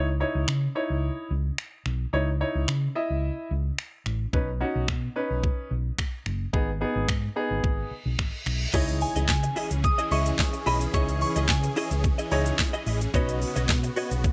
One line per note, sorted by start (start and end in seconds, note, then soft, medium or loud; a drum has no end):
0.00 0.22 C#2 loud
0.20 0.48 D#4 medium
0.20 0.48 E4 medium
0.20 0.48 C#5 medium
0.35 0.44 C#2 medium
0.48 0.67 C#3 loud
0.48 finger snap loud
0.75 1.30 D#4 medium
0.75 1.30 E4 medium
0.75 1.30 C#5 loud
0.90 1.09 C#2 medium
1.31 1.49 C#2 medium
1.58 finger snap loud
1.86 2.04 B1 medium
1.86 finger snap medium
2.13 2.42 C#2 loud
2.13 2.27 D#4 medium
2.13 2.28 E4 medium
2.13 2.28 C#5 loud
2.41 2.68 D#4 medium
2.41 2.68 E4 medium
2.41 2.68 C#5 medium
2.55 2.64 C#2 medium
2.68 2.87 C#3 loud
2.68 finger snap loud
2.95 3.50 E4 medium
2.95 3.50 D#5 medium
2.95 3.50 E5 loud
3.10 3.29 C#2 medium
3.51 3.70 C#2 medium
3.78 finger snap loud
4.06 4.25 A1 medium
4.06 finger snap medium
4.33 4.62 B1 loud
4.33 4.48 C#4 medium
4.33 4.48 D#4 medium
4.33 4.48 B4 medium
4.33 kick loud
4.60 4.88 C#4 medium
4.60 4.88 D#4 medium
4.60 4.88 F#4 medium
4.76 4.84 B1 medium
4.88 5.07 B2 loud
4.88 finger snap loud
4.88 kick loud
5.16 5.70 C#4 medium
5.16 5.70 D#4 medium
5.16 5.70 B4 loud
5.30 5.49 B1 medium
5.44 kick loud
5.71 5.90 B1 medium
5.99 finger snap loud
5.99 kick loud
6.26 6.45 F#1 medium
6.26 finger snap medium
6.53 6.82 G#1 loud
6.53 6.68 B3 medium
6.53 6.68 D#4 medium
6.53 6.68 G#4 medium
6.53 kick loud
6.81 7.08 B3 medium
6.81 7.08 D#4 medium
6.81 7.08 G#4 medium
6.96 7.04 G#1 medium
7.09 7.27 G#2 medium
7.09 finger snap loud
7.09 kick loud
7.36 7.90 B3 medium
7.36 7.90 D#4 medium
7.36 7.91 G#4 loud
7.51 7.60 G#1 medium
7.64 7.83 G#1 medium
7.64 kick loud
7.64 reverse cymbal medium
7.91 muted fingered electric bass stroke soft
8.06 8.15 B1 medium
8.19 finger snap loud
8.19 kick loud
8.46 8.65 B1 medium
8.46 finger snap medium
8.73 9.03 C#2 loud
8.73 13.10 E3 medium
8.73 13.10 C#4 medium
8.73 9.28 D#4 medium
8.73 8.99 E4 medium
8.73 9.28 E4 medium
8.73 13.10 G#4 medium
8.73 8.99 G#4 medium
8.73 9.28 C#5 loud
8.73 9.00 D#5 medium
8.73 kick loud
8.73 crash loud
8.73 impact medium
8.73 shaker medium
8.88 closed hi-hat medium
8.88 shaker medium
9.01 9.27 G#5 medium
9.01 muted clean electric guitar stroke soft
9.01 open hi-hat medium
9.01 shaker medium
9.16 9.25 C#2 medium
9.16 9.27 E4 medium
9.16 9.28 G#4 medium
9.16 9.28 D#5 medium
9.16 closed hi-hat medium
9.16 shaker medium
9.29 9.48 C#3 loud
9.29 9.80 G#5 medium
9.29 muted clean electric guitar stroke soft
9.29 kick loud
9.29 snare loud
9.29 clap loud
9.29 shaker medium
9.43 muted clean electric guitar stroke soft
9.43 closed hi-hat medium
9.43 shaker medium
9.56 9.73 E4 medium
9.56 9.70 G#4 medium
9.56 9.70 D#5 medium
9.56 open hi-hat medium
9.56 shaker soft
9.71 9.90 C#2 medium
9.71 muted clean electric guitar stroke soft
9.71 closed hi-hat medium
9.71 shaker medium
9.84 10.12 D#6 loud
9.84 muted clean electric guitar stroke soft
9.84 kick loud
9.84 shaker medium
9.98 10.10 E4 medium
9.98 10.10 G#4 medium
9.98 10.10 D#5 medium
9.98 closed hi-hat medium
9.98 shaker medium
10.11 10.30 C#2 loud
10.11 10.28 E4 medium
10.11 10.53 E4 medium
10.11 10.25 G#4 medium
10.11 10.53 D#5 medium
10.11 10.25 D#5 medium
10.11 10.53 E5 medium
10.11 10.68 C#6 loud
10.11 open hi-hat medium
10.11 shaker medium
10.26 muted clean electric guitar stroke soft
10.26 closed hi-hat medium
10.26 shaker medium
10.39 muted clean electric guitar stroke soft
10.39 kick loud
10.39 snare medium
10.39 clap loud
10.39 shaker medium
10.53 muted clean electric guitar stroke medium
10.53 closed hi-hat medium
10.53 shaker medium
10.66 10.85 B1 medium
10.66 10.83 E4 medium
10.66 10.80 G#4 loud
10.66 10.80 D#5 loud
10.66 10.95 B5 medium
10.66 open hi-hat medium
10.66 shaker medium
10.81 muted clean electric guitar stroke medium
10.81 closed hi-hat medium
10.81 shaker medium
10.94 11.23 C#2 loud
10.94 11.48 D#4 medium
10.94 11.19 E4 medium
10.94 11.48 E4 medium
10.94 11.20 G#4 medium
10.94 11.48 C#5 medium
10.94 11.20 D#5 medium
10.94 11.20 C#6 loud
10.94 kick loud
10.94 shaker medium
11.09 closed hi-hat medium
11.09 shaker medium
11.21 11.50 C#6 loud
11.21 muted clean electric guitar stroke medium
11.21 open hi-hat medium
11.21 shaker medium
11.36 11.45 C#2 medium
11.36 11.47 E4 medium
11.36 11.48 G#4 medium
11.36 11.48 D#5 medium
11.36 closed hi-hat medium
11.36 shaker medium
11.49 11.68 C#3 loud
11.49 12.83 G#5 medium
11.49 kick loud
11.49 snare loud
11.49 clap loud
11.49 shaker medium
11.63 muted clean electric guitar stroke soft
11.63 closed hi-hat medium
11.63 shaker medium
11.76 11.93 E4 medium
11.76 11.90 G#4 medium
11.76 11.90 D#5 medium
11.76 open hi-hat medium
11.76 shaker medium
11.91 12.10 C#2 medium
11.91 muted clean electric guitar stroke soft
11.91 closed hi-hat medium
11.91 shaker medium
12.04 muted clean electric guitar stroke soft
12.04 kick loud
12.04 shaker medium
12.18 12.30 E4 medium
12.18 12.31 G#4 medium
12.18 12.30 D#5 medium
12.18 closed hi-hat medium
12.18 shaker medium
12.31 12.50 C#2 medium
12.31 12.73 D#4 loud
12.31 12.48 E4 medium
12.31 12.73 E4 medium
12.31 12.46 G#4 loud
12.31 12.73 C#5 loud
12.31 12.45 D#5 medium
12.31 open hi-hat medium
12.31 shaker medium
12.46 muted clean electric guitar stroke soft
12.46 closed hi-hat medium
12.46 shaker medium
12.59 muted clean electric guitar stroke soft
12.59 kick loud
12.59 snare loud
12.59 clap loud
12.59 shaker medium
12.73 12.85 E4 medium
12.73 12.86 G#4 medium
12.73 12.86 D#5 medium
12.73 closed hi-hat medium
12.73 shaker medium
12.86 13.05 A1 medium
12.86 13.00 E4 medium
12.86 13.00 G#4 medium
12.86 13.00 D#5 medium
12.86 open hi-hat medium
12.86 shaker medium
13.01 muted clean electric guitar stroke soft
13.01 closed hi-hat medium
13.01 shaker medium
13.14 13.43 B1 loud
13.14 14.32 C#3 medium
13.14 14.32 B3 medium
13.14 13.68 C#4 medium
13.14 13.68 D#4 medium
13.14 13.39 F#4 medium
13.14 14.32 F#4 medium
13.14 13.69 B4 loud
13.14 13.40 C#5 loud
13.14 13.40 D#5 medium
13.14 kick loud
13.14 shaker medium
13.29 closed hi-hat medium
13.29 shaker medium
13.41 muted clean electric guitar stroke soft
13.41 open hi-hat medium
13.41 shaker medium
13.56 13.65 B1 medium
13.56 13.68 F#4 medium
13.56 13.68 C#5 medium
13.56 13.68 D#5 medium
13.56 closed hi-hat medium
13.56 shaker medium
13.69 13.88 B2 loud
13.69 muted clean electric guitar stroke soft
13.69 kick loud
13.69 snare loud
13.69 clap loud
13.69 shaker medium
13.83 muted clean electric guitar stroke soft
13.83 closed hi-hat medium
13.83 shaker medium
13.96 14.13 F#4 medium
13.96 14.11 C#5 medium
13.96 14.10 D#5 medium
13.96 open hi-hat medium
13.96 shaker medium
14.11 14.30 B1 medium
14.11 muted clean electric guitar stroke soft
14.11 closed hi-hat medium
14.11 shaker medium
14.24 muted clean electric guitar stroke soft
14.24 kick loud
14.24 shaker medium